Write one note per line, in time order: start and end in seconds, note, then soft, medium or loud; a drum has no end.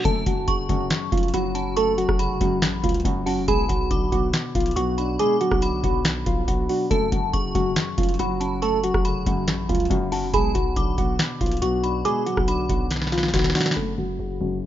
0.05 0.26 F#1 loud
0.05 0.25 F#2 medium
0.05 0.22 A3 medium
0.05 0.21 A4 loud
0.05 0.45 A5 loud
0.05 kick loud
0.05 closed hi-hat medium
0.26 0.47 F#1 loud
0.26 0.68 F#2 medium
0.26 0.67 F#3 medium
0.26 0.67 F#4 medium
0.26 kick medium
0.26 closed hi-hat medium
0.48 0.68 F#1 loud
0.48 1.55 C#3 medium
0.48 1.30 C#6 loud
0.48 kick loud
0.48 closed hi-hat medium
0.69 0.90 F#1 loud
0.69 1.11 F#2 medium
0.69 0.86 F#3 medium
0.69 0.86 F#4 medium
0.69 kick medium
0.69 closed hi-hat medium
0.90 snare loud
0.90 closed hi-hat medium
1.12 1.33 F1 loud
1.12 2.19 F#2 medium
1.12 1.29 F3 medium
1.12 1.29 F4 medium
1.12 kick loud
1.12 closed hi-hat medium
1.18 closed hi-hat medium
1.23 closed hi-hat medium
1.28 closed hi-hat soft
1.34 2.06 F#1 loud
1.34 2.41 F#3 medium
1.34 1.74 F#3 medium
1.34 1.74 F#4 medium
1.34 1.54 B5 medium
1.34 closed hi-hat loud
1.55 2.62 C#4 medium
1.55 1.75 A5 medium
1.55 closed hi-hat medium
1.77 1.94 A3 medium
1.77 1.93 A4 loud
1.77 2.17 C#6 loud
1.77 closed hi-hat medium
1.98 2.39 F#3 medium
1.98 2.38 F#4 medium
1.98 closed hi-hat medium
2.09 2.40 F1 loud
2.09 kick loud
2.09 cross-stick loud
2.19 3.26 C#3 medium
2.19 3.22 B5 medium
2.19 closed hi-hat medium
2.41 2.64 F#1 loud
2.41 2.82 F#2 loud
2.41 2.58 F#3 medium
2.41 2.58 F#4 medium
2.41 kick medium
2.41 closed hi-hat medium
2.62 2.83 A1 loud
2.62 snare loud
2.62 closed hi-hat loud
2.84 3.04 C#2 loud
2.84 3.03 F#2 medium
2.84 3.01 F3 medium
2.84 3.00 F4 medium
2.84 kick medium
2.84 closed hi-hat medium
2.89 closed hi-hat medium
2.94 closed hi-hat medium
3.00 closed hi-hat soft
3.05 3.39 F#1 loud
3.05 3.48 F#2 loud
3.05 3.22 F#3 medium
3.05 3.22 F#4 medium
3.05 kick loud
3.05 closed hi-hat loud
3.26 3.43 F#3 medium
3.26 3.48 C#4 medium
3.26 3.43 F#4 medium
3.26 3.47 A5 medium
3.26 open hi-hat medium
3.37 3.47 F1 loud
3.48 3.69 B1 loud
3.48 3.68 B2 medium
3.48 3.65 G#3 medium
3.48 3.64 G#4 loud
3.48 3.88 B5 loud
3.48 kick loud
3.48 closed hi-hat medium
3.69 3.90 B1 loud
3.69 4.11 B2 medium
3.69 4.10 F#3 medium
3.69 4.09 F#4 medium
3.69 kick medium
3.69 closed hi-hat medium
3.91 4.11 B1 loud
3.91 4.98 D3 medium
3.91 4.73 D6 medium
3.91 kick loud
3.91 closed hi-hat medium
4.12 4.33 B1 loud
4.12 4.54 B2 loud
4.12 4.29 F#3 medium
4.12 4.29 F#4 medium
4.12 kick medium
4.12 closed hi-hat medium
4.33 snare loud
4.33 closed hi-hat medium
4.55 4.76 B1 loud
4.55 4.75 B2 medium
4.55 4.72 F3 medium
4.55 4.72 F4 medium
4.55 kick medium
4.55 closed hi-hat medium
4.60 closed hi-hat medium
4.66 closed hi-hat soft
4.71 closed hi-hat soft
4.76 5.18 B1 loud
4.76 5.18 B2 loud
4.76 5.17 F#3 medium
4.76 5.17 F#4 medium
4.76 4.97 C#6 medium
4.76 closed hi-hat loud
4.98 6.05 D4 medium
4.98 5.18 B5 medium
4.98 closed hi-hat medium
5.19 5.39 B2 medium
5.19 5.36 G#3 medium
5.19 5.36 G#4 loud
5.19 5.60 D6 loud
5.19 closed hi-hat medium
5.41 5.82 B2 medium
5.41 5.81 F#3 medium
5.41 5.81 F#4 medium
5.41 closed hi-hat medium
5.51 5.82 B1 loud
5.51 kick loud
5.51 cross-stick loud
5.62 6.69 D3 medium
5.62 6.87 B5 medium
5.62 closed hi-hat medium
5.84 6.25 B1 loud
5.84 6.24 B2 loud
5.84 6.01 F#3 medium
5.84 6.00 F#4 medium
5.84 kick medium
5.84 closed hi-hat medium
6.05 snare loud
6.05 closed hi-hat medium
6.26 6.47 B1 loud
6.26 6.46 B2 medium
6.26 6.43 F3 medium
6.26 6.43 F4 medium
6.26 kick medium
6.26 closed hi-hat medium
6.48 6.68 B1 loud
6.48 6.91 B2 medium
6.48 6.65 F#3 medium
6.48 6.64 F#4 medium
6.48 kick loud
6.48 closed hi-hat loud
6.69 6.86 F#3 medium
6.69 6.91 D4 medium
6.69 6.86 F#4 medium
6.69 open hi-hat medium
6.91 7.11 F#1 loud
6.91 7.10 F#2 medium
6.91 7.08 A3 medium
6.91 7.07 A4 loud
6.91 7.31 A5 loud
6.91 kick loud
6.91 closed hi-hat medium
7.12 7.33 F#1 loud
7.12 7.54 F#2 medium
7.12 7.53 F#3 medium
7.12 7.53 F#4 medium
7.12 kick medium
7.12 closed hi-hat medium
7.33 7.54 F#1 loud
7.33 8.41 C#3 medium
7.33 8.15 C#6 loud
7.33 kick loud
7.33 closed hi-hat medium
7.55 7.76 F#1 loud
7.55 7.97 F#2 medium
7.55 7.72 F#3 medium
7.55 7.71 F#4 medium
7.55 kick medium
7.55 closed hi-hat medium
7.76 snare loud
7.76 closed hi-hat medium
7.98 8.18 F1 loud
7.98 9.05 F#2 medium
7.98 8.15 F3 medium
7.98 8.14 F4 medium
7.98 kick medium
7.98 closed hi-hat medium
8.03 closed hi-hat medium
8.09 closed hi-hat medium
8.14 closed hi-hat soft
8.19 8.91 F#1 loud
8.19 9.26 F#3 medium
8.19 8.60 F#3 medium
8.19 8.60 F#4 medium
8.19 8.40 B5 medium
8.19 closed hi-hat loud
8.40 9.48 C#4 medium
8.40 8.61 A5 medium
8.40 closed hi-hat medium
8.62 8.79 A3 medium
8.62 8.79 A4 loud
8.62 9.02 C#6 loud
8.62 closed hi-hat medium
8.84 9.24 F#3 medium
8.84 9.24 F#4 medium
8.84 closed hi-hat medium
8.94 9.25 F1 loud
8.94 kick loud
8.94 cross-stick loud
9.05 10.12 C#3 medium
9.05 10.08 B5 medium
9.05 closed hi-hat medium
9.26 9.49 F#1 loud
9.26 9.68 F#2 medium
9.26 9.44 F#3 medium
9.26 9.43 F#4 medium
9.26 kick medium
9.26 closed hi-hat medium
9.48 9.68 A1 loud
9.48 snare loud
9.48 closed hi-hat medium
9.69 9.90 C#2 loud
9.69 9.89 F#2 medium
9.69 9.86 F3 medium
9.69 9.86 F4 medium
9.69 kick medium
9.69 closed hi-hat medium
9.75 closed hi-hat medium
9.80 closed hi-hat medium
9.85 closed hi-hat soft
9.90 10.24 F#1 loud
9.90 10.33 F#2 loud
9.90 10.08 F#3 medium
9.90 10.07 F#4 medium
9.90 kick loud
9.90 closed hi-hat loud
10.12 10.29 F#3 medium
10.12 10.34 C#4 medium
10.12 10.29 F#4 medium
10.12 10.32 A5 medium
10.12 open hi-hat medium
10.23 10.33 F1 loud
10.34 10.54 B1 loud
10.34 10.54 B2 medium
10.34 10.51 G#3 medium
10.34 10.50 G#4 loud
10.34 10.74 B5 loud
10.34 kick loud
10.34 closed hi-hat medium
10.54 10.76 B1 loud
10.54 10.97 B2 medium
10.54 10.95 F#3 medium
10.54 10.95 F#4 medium
10.54 kick medium
10.54 closed hi-hat medium
10.76 10.97 B1 loud
10.76 11.84 D3 medium
10.76 11.58 D6 medium
10.76 kick loud
10.76 closed hi-hat medium
10.98 11.19 B1 loud
10.98 11.40 B2 loud
10.98 11.15 F#3 medium
10.98 11.15 F#4 medium
10.98 kick medium
10.98 closed hi-hat medium
11.19 snare loud
11.19 closed hi-hat medium
11.41 11.61 B1 loud
11.41 11.61 B2 medium
11.41 11.58 F3 medium
11.41 11.57 F4 medium
11.41 kick medium
11.41 closed hi-hat medium
11.46 closed hi-hat medium
11.52 closed hi-hat medium
11.57 closed hi-hat soft
11.62 12.03 B1 loud
11.62 12.04 B2 loud
11.62 12.03 F#3 medium
11.62 12.02 F#4 medium
11.62 11.82 C#6 medium
11.62 closed hi-hat loud
11.84 12.91 D4 medium
11.84 12.04 B5 medium
11.84 closed hi-hat medium
12.05 12.25 B2 loud
12.05 12.22 G#3 medium
12.05 12.22 G#4 loud
12.05 12.45 D6 loud
12.05 closed hi-hat medium
12.26 12.68 B2 medium
12.26 12.67 F#3 medium
12.26 12.67 F#4 medium
12.26 closed hi-hat medium
12.37 12.68 B1 loud
12.37 kick loud
12.37 cross-stick loud
12.48 13.55 D3 medium
12.48 13.72 B5 medium
12.48 closed hi-hat medium
12.69 13.31 B1 loud
12.69 13.10 B2 medium
12.69 12.87 F#3 medium
12.69 12.86 F#4 medium
12.69 kick medium
12.69 closed hi-hat medium
12.91 snare medium
12.91 closed hi-hat medium
12.96 snare medium
13.02 snare medium
13.07 snare medium
13.12 13.32 B2 medium
13.12 13.29 F3 medium
13.12 13.29 F4 medium
13.12 snare medium
13.12 closed hi-hat medium
13.18 snare medium
13.23 snare medium
13.28 snare medium
13.33 13.54 B1 loud
13.33 13.76 B2 medium
13.33 13.51 F#3 medium
13.33 13.50 F#4 medium
13.33 kick loud
13.33 snare loud
13.33 closed hi-hat loud
13.39 snare medium
13.44 snare loud
13.50 snare medium
13.55 13.72 F#3 medium
13.55 13.76 D4 medium
13.55 13.72 F#4 medium
13.55 snare loud
13.55 open hi-hat medium
13.61 snare loud
13.66 snare loud
13.71 snare loud
13.76 13.97 F#1 loud
13.76 13.96 F#2 medium
13.76 13.93 A3 medium
13.76 13.93 A4 loud
13.98 14.18 F#1 loud
13.98 14.39 F#2 medium
13.98 14.39 F#3 medium
13.98 14.38 F#4 medium
14.19 14.40 F#1 loud
14.19 14.66 C#3 medium
14.41 14.61 F#1 loud
14.41 14.66 F#2 medium
14.41 14.58 F#3 medium
14.41 14.57 F#4 medium